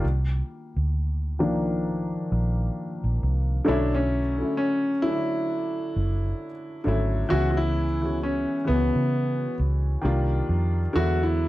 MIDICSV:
0, 0, Header, 1, 4, 480
1, 0, Start_track
1, 0, Tempo, 909091
1, 15, Time_signature, 4, 2, 24, 8
1, 6064, End_track
2, 0, Start_track
2, 0, Title_t, "Grand piano"
2, 0, Program_c, 0, 0
2, 1944, Note_on_c, 0, 62, 89
2, 2083, Note_on_c, 0, 61, 89
2, 2086, Note_off_c, 0, 62, 0
2, 2397, Note_off_c, 0, 61, 0
2, 2415, Note_on_c, 0, 61, 95
2, 2652, Note_on_c, 0, 64, 101
2, 2662, Note_off_c, 0, 61, 0
2, 3592, Note_off_c, 0, 64, 0
2, 3855, Note_on_c, 0, 66, 111
2, 3955, Note_off_c, 0, 66, 0
2, 3963, Note_on_c, 0, 66, 75
2, 3998, Note_on_c, 0, 64, 106
2, 4002, Note_off_c, 0, 66, 0
2, 4315, Note_off_c, 0, 64, 0
2, 4348, Note_on_c, 0, 61, 87
2, 4565, Note_off_c, 0, 61, 0
2, 4580, Note_on_c, 0, 59, 97
2, 5037, Note_off_c, 0, 59, 0
2, 5785, Note_on_c, 0, 66, 109
2, 5926, Note_off_c, 0, 66, 0
2, 5930, Note_on_c, 0, 64, 95
2, 6064, Note_off_c, 0, 64, 0
2, 6064, End_track
3, 0, Start_track
3, 0, Title_t, "Upright piano"
3, 0, Program_c, 1, 0
3, 0, Control_c, 1, 64, 127
3, 21, Control_c, 1, 64, 0
3, 120, Control_c, 1, 64, 127
3, 734, Note_on_c, 1, 51, 56
3, 739, Note_on_c, 1, 53, 51
3, 740, Note_on_c, 1, 58, 51
3, 740, Note_on_c, 1, 62, 59
3, 1914, Note_off_c, 1, 51, 0
3, 1916, Note_off_c, 1, 53, 0
3, 1916, Note_off_c, 1, 58, 0
3, 1916, Note_off_c, 1, 62, 0
3, 1925, Note_on_c, 1, 50, 89
3, 1931, Note_on_c, 1, 54, 87
3, 1935, Note_on_c, 1, 57, 91
3, 1941, Note_on_c, 1, 61, 87
3, 1942, Control_c, 1, 64, 0
3, 1946, Note_on_c, 1, 64, 100
3, 2037, Control_c, 1, 64, 127
3, 2217, Note_off_c, 1, 50, 0
3, 2220, Note_off_c, 1, 54, 0
3, 2222, Note_off_c, 1, 57, 0
3, 2225, Note_off_c, 1, 61, 0
3, 2227, Note_off_c, 1, 64, 0
3, 2313, Note_on_c, 1, 50, 70
3, 2316, Note_on_c, 1, 54, 62
3, 2321, Note_on_c, 1, 57, 60
3, 2325, Note_on_c, 1, 61, 60
3, 2331, Note_on_c, 1, 64, 72
3, 2587, Note_off_c, 1, 50, 0
3, 2589, Note_off_c, 1, 54, 0
3, 2591, Note_off_c, 1, 57, 0
3, 2594, Note_off_c, 1, 61, 0
3, 2597, Note_off_c, 1, 64, 0
3, 2653, Note_on_c, 1, 50, 74
3, 2659, Note_on_c, 1, 54, 69
3, 2662, Note_on_c, 1, 57, 72
3, 2666, Note_on_c, 1, 61, 65
3, 2671, Note_on_c, 1, 62, 69
3, 2704, Note_off_c, 1, 62, 0
3, 2705, Note_on_c, 1, 64, 88
3, 3405, Note_off_c, 1, 50, 0
3, 3408, Note_off_c, 1, 54, 0
3, 3409, Note_off_c, 1, 57, 0
3, 3411, Note_off_c, 1, 61, 0
3, 3431, Note_off_c, 1, 64, 0
3, 3612, Note_on_c, 1, 50, 93
3, 3618, Note_on_c, 1, 54, 83
3, 3625, Note_on_c, 1, 57, 89
3, 3629, Note_on_c, 1, 61, 85
3, 3633, Note_on_c, 1, 64, 104
3, 3810, Note_off_c, 1, 50, 0
3, 3813, Note_off_c, 1, 54, 0
3, 3816, Note_off_c, 1, 57, 0
3, 3818, Note_off_c, 1, 61, 0
3, 3821, Note_off_c, 1, 64, 0
3, 3848, Note_on_c, 1, 52, 98
3, 3853, Note_on_c, 1, 56, 88
3, 3857, Note_on_c, 1, 59, 91
3, 3860, Note_on_c, 1, 61, 86
3, 3863, Control_c, 1, 64, 0
3, 3865, Note_on_c, 1, 64, 111
3, 3955, Control_c, 1, 64, 127
3, 4138, Note_off_c, 1, 52, 0
3, 4141, Note_off_c, 1, 56, 0
3, 4143, Note_off_c, 1, 59, 0
3, 4145, Note_off_c, 1, 61, 0
3, 4147, Note_off_c, 1, 64, 0
3, 4234, Note_on_c, 1, 52, 67
3, 4238, Note_on_c, 1, 56, 66
3, 4242, Note_on_c, 1, 59, 63
3, 4246, Note_on_c, 1, 61, 64
3, 4251, Note_on_c, 1, 66, 73
3, 4508, Note_off_c, 1, 52, 0
3, 4510, Note_off_c, 1, 56, 0
3, 4512, Note_off_c, 1, 59, 0
3, 4514, Note_off_c, 1, 61, 0
3, 4517, Note_off_c, 1, 66, 0
3, 4565, Note_on_c, 1, 52, 77
3, 4570, Note_on_c, 1, 56, 68
3, 4576, Note_on_c, 1, 59, 72
3, 4580, Note_on_c, 1, 61, 66
3, 4584, Note_on_c, 1, 64, 68
3, 4619, Note_on_c, 1, 66, 79
3, 4620, Note_off_c, 1, 64, 0
3, 5288, Note_on_c, 1, 51, 94
3, 5290, Note_off_c, 1, 52, 0
3, 5293, Note_off_c, 1, 56, 0
3, 5295, Note_on_c, 1, 55, 81
3, 5296, Note_off_c, 1, 59, 0
3, 5297, Note_off_c, 1, 61, 0
3, 5299, Note_on_c, 1, 58, 82
3, 5302, Control_c, 1, 64, 0
3, 5304, Note_on_c, 1, 62, 85
3, 5308, Note_on_c, 1, 65, 98
3, 5317, Note_off_c, 1, 66, 0
3, 5398, Control_c, 1, 64, 127
3, 5693, Note_off_c, 1, 51, 0
3, 5697, Note_off_c, 1, 55, 0
3, 5699, Note_off_c, 1, 58, 0
3, 5701, Note_off_c, 1, 62, 0
3, 5703, Note_off_c, 1, 65, 0
3, 5772, Note_on_c, 1, 50, 104
3, 5775, Note_on_c, 1, 54, 88
3, 5781, Note_on_c, 1, 56, 93
3, 5782, Control_c, 1, 64, 0
3, 5785, Note_on_c, 1, 59, 85
3, 5791, Note_on_c, 1, 64, 109
3, 5870, Control_c, 1, 64, 127
3, 6060, Note_off_c, 1, 50, 0
3, 6062, Note_off_c, 1, 54, 0
3, 6064, Note_off_c, 1, 56, 0
3, 6064, Note_off_c, 1, 59, 0
3, 6064, Note_off_c, 1, 64, 0
3, 6064, End_track
4, 0, Start_track
4, 0, Title_t, "Fingered electric bass"
4, 0, Program_c, 2, 33
4, 23, Note_on_c, 2, 36, 106
4, 216, Note_off_c, 2, 36, 0
4, 404, Note_on_c, 2, 38, 71
4, 744, Note_off_c, 2, 38, 0
4, 744, Note_on_c, 2, 36, 90
4, 1133, Note_off_c, 2, 36, 0
4, 1224, Note_on_c, 2, 34, 92
4, 1417, Note_off_c, 2, 34, 0
4, 1604, Note_on_c, 2, 34, 75
4, 1682, Note_off_c, 2, 34, 0
4, 1705, Note_on_c, 2, 36, 84
4, 1897, Note_off_c, 2, 36, 0
4, 1945, Note_on_c, 2, 35, 100
4, 2333, Note_off_c, 2, 35, 0
4, 3148, Note_on_c, 2, 30, 92
4, 3339, Note_off_c, 2, 30, 0
4, 3626, Note_on_c, 2, 32, 88
4, 3818, Note_off_c, 2, 32, 0
4, 3866, Note_on_c, 2, 37, 114
4, 4461, Note_off_c, 2, 37, 0
4, 4588, Note_on_c, 2, 37, 92
4, 4699, Note_off_c, 2, 37, 0
4, 4727, Note_on_c, 2, 49, 100
4, 5000, Note_off_c, 2, 49, 0
4, 5066, Note_on_c, 2, 37, 88
4, 5258, Note_off_c, 2, 37, 0
4, 5304, Note_on_c, 2, 36, 109
4, 5497, Note_off_c, 2, 36, 0
4, 5540, Note_on_c, 2, 41, 102
4, 5734, Note_off_c, 2, 41, 0
4, 5784, Note_on_c, 2, 40, 99
4, 6064, Note_off_c, 2, 40, 0
4, 6064, End_track
0, 0, End_of_file